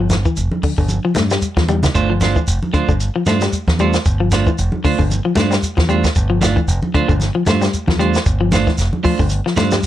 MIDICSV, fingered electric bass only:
0, 0, Header, 1, 3, 480
1, 0, Start_track
1, 0, Tempo, 525855
1, 1780, Time_signature, 4, 2, 24, 8
1, 9006, End_track
2, 0, Start_track
2, 0, Title_t, "Fingered electric bass"
2, 0, Program_c, 0, 33
2, 0, Note_on_c, 0, 31, 83
2, 224, Note_off_c, 0, 31, 0
2, 338, Note_on_c, 0, 29, 79
2, 440, Note_off_c, 0, 29, 0
2, 712, Note_on_c, 0, 31, 85
2, 895, Note_off_c, 0, 31, 0
2, 1057, Note_on_c, 0, 43, 79
2, 1241, Note_off_c, 0, 43, 0
2, 1433, Note_on_c, 0, 40, 75
2, 1697, Note_off_c, 0, 40, 0
2, 1780, Note_on_c, 0, 31, 84
2, 2145, Note_off_c, 0, 31, 0
2, 2257, Note_on_c, 0, 29, 72
2, 2360, Note_off_c, 0, 29, 0
2, 2633, Note_on_c, 0, 31, 79
2, 2816, Note_off_c, 0, 31, 0
2, 2984, Note_on_c, 0, 43, 86
2, 3165, Note_off_c, 0, 43, 0
2, 3358, Note_on_c, 0, 40, 78
2, 3620, Note_off_c, 0, 40, 0
2, 3705, Note_on_c, 0, 31, 86
2, 4068, Note_off_c, 0, 31, 0
2, 4184, Note_on_c, 0, 29, 79
2, 4284, Note_off_c, 0, 29, 0
2, 4558, Note_on_c, 0, 31, 83
2, 4739, Note_off_c, 0, 31, 0
2, 4899, Note_on_c, 0, 43, 85
2, 5082, Note_off_c, 0, 43, 0
2, 5274, Note_on_c, 0, 40, 83
2, 5538, Note_off_c, 0, 40, 0
2, 5623, Note_on_c, 0, 31, 83
2, 5987, Note_off_c, 0, 31, 0
2, 6095, Note_on_c, 0, 29, 87
2, 6199, Note_off_c, 0, 29, 0
2, 6473, Note_on_c, 0, 31, 91
2, 6656, Note_off_c, 0, 31, 0
2, 6817, Note_on_c, 0, 43, 87
2, 7001, Note_off_c, 0, 43, 0
2, 7192, Note_on_c, 0, 40, 83
2, 7456, Note_off_c, 0, 40, 0
2, 7540, Note_on_c, 0, 31, 93
2, 7905, Note_off_c, 0, 31, 0
2, 8014, Note_on_c, 0, 29, 85
2, 8118, Note_off_c, 0, 29, 0
2, 8393, Note_on_c, 0, 31, 88
2, 8575, Note_off_c, 0, 31, 0
2, 8736, Note_on_c, 0, 43, 91
2, 8920, Note_off_c, 0, 43, 0
2, 9006, End_track
3, 0, Start_track
3, 0, Title_t, "Muted fingered electric bass strokes"
3, 578, Note_on_c, 9, 29, 31
3, 670, Note_off_c, 9, 29, 0
3, 2500, Note_on_c, 9, 29, 30
3, 2591, Note_off_c, 9, 29, 0
3, 4426, Note_on_c, 9, 29, 33
3, 4517, Note_off_c, 9, 29, 0
3, 6340, Note_on_c, 9, 29, 30
3, 6431, Note_off_c, 9, 29, 0
3, 8257, Note_on_c, 9, 29, 33
3, 8348, Note_off_c, 9, 29, 0
3, 9006, End_track
0, 0, End_of_file